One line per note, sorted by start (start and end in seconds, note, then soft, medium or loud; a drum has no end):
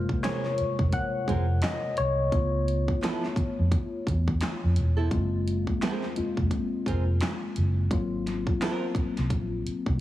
0.00 0.54 C3 soft
0.00 0.54 G#3 soft
0.00 0.54 A#3 soft
0.00 0.55 F4 medium
0.00 0.24 A#4 medium
0.00 2.34 C5 medium
0.09 muted fingered electric bass stroke soft
0.09 kick medium
0.23 0.44 G#3 medium
0.23 0.45 C4 medium
0.23 0.45 F4 medium
0.23 0.45 A#4 medium
0.23 0.95 C#5 medium
0.23 snare medium
0.23 clap medium
0.23 closed hi-hat medium
0.45 snare soft
0.58 muted fingered electric bass stroke soft
0.58 closed hi-hat medium
0.79 0.92 F1 medium
0.79 kick medium
0.93 1.65 F#5 medium
0.93 kick medium
0.93 closed hi-hat medium
1.28 1.60 F1 medium
1.28 1.44 G#3 medium
1.28 1.45 C4 medium
1.28 1.45 F4 medium
1.28 1.45 A#4 medium
1.28 kick medium
1.28 closed hi-hat medium
1.62 1.95 D#5 medium
1.62 snare loud
1.62 clap medium
1.62 closed hi-hat medium
1.97 2.30 C2 medium
1.97 2.63 C#5 medium
1.97 closed hi-hat medium
2.32 2.84 C#2 loud
2.32 2.81 A3 medium
2.32 2.82 B3 medium
2.32 2.82 F4 medium
2.32 kick loud
2.32 closed hi-hat medium
2.68 closed hi-hat medium
2.88 kick medium
3.01 3.23 F3 medium
3.01 3.23 B3 medium
3.01 3.24 E4 medium
3.01 3.24 A4 medium
3.01 snare loud
3.01 clap medium
3.01 closed hi-hat medium
3.25 snare soft
3.36 muted fingered electric bass stroke soft
3.36 kick medium
3.36 closed hi-hat medium
3.59 3.71 F2 medium
3.72 kick medium
3.72 closed hi-hat medium
4.07 4.39 E2 medium
4.07 kick medium
4.07 closed hi-hat medium
4.28 kick medium
4.41 snare loud
4.41 clap medium
4.41 closed hi-hat medium
4.64 4.76 F2 medium
4.76 5.09 E1 medium
4.76 closed hi-hat medium
4.97 5.10 F3 medium
4.97 5.09 B3 medium
4.97 5.09 E4 medium
4.97 5.08 A4 medium
5.11 5.63 F#1 medium
5.11 6.12 G#3 medium
5.11 6.12 A#3 medium
5.11 6.13 C4 soft
5.11 6.13 F4 medium
5.11 kick loud
5.11 closed hi-hat medium
5.48 closed hi-hat medium
5.67 muted fingered electric bass stroke soft
5.67 kick medium
5.81 6.04 G#3 medium
5.81 6.05 C4 medium
5.81 6.05 F4 medium
5.81 6.05 A#4 medium
5.81 snare loud
5.81 clap medium
5.81 closed hi-hat medium
6.03 snare soft
6.16 6.48 G#3 soft
6.16 6.48 A#3 soft
6.16 6.48 C4 soft
6.16 6.48 F4 medium
6.16 muted fingered electric bass stroke soft
6.16 closed hi-hat medium
6.37 6.50 F1 medium
6.37 kick medium
6.51 kick medium
6.51 closed hi-hat medium
6.86 7.18 F1 medium
6.86 7.03 G#3 medium
6.86 7.03 C4 medium
6.86 7.03 F4 medium
6.86 7.04 A#4 medium
6.86 kick medium
6.86 closed hi-hat medium
7.21 snare medium
7.21 clap medium
7.21 closed hi-hat medium
7.56 7.88 F#1 medium
7.56 closed hi-hat medium
7.91 8.43 G#1 medium
7.91 10.00 F#3 medium
7.91 10.00 A#3 medium
7.91 10.00 C4 soft
7.91 10.00 F4 medium
7.91 kick loud
7.91 closed hi-hat medium
8.27 snare soft
8.27 closed hi-hat medium
8.47 muted fingered electric bass stroke soft
8.47 kick medium
8.61 8.83 F#3 medium
8.61 8.84 C4 medium
8.61 8.84 F4 medium
8.61 8.85 A#4 medium
8.61 snare loud
8.61 clap medium
8.61 closed hi-hat medium
8.95 muted fingered electric bass stroke soft
8.95 kick loud
8.95 closed hi-hat medium
9.17 9.31 C2 medium
9.17 snare soft
9.17 closed hi-hat soft
9.30 9.62 A#1 medium
9.30 kick medium
9.30 closed hi-hat medium
9.67 muted fingered electric bass stroke soft
9.67 closed hi-hat medium
9.86 10.00 C2 loud
9.86 kick medium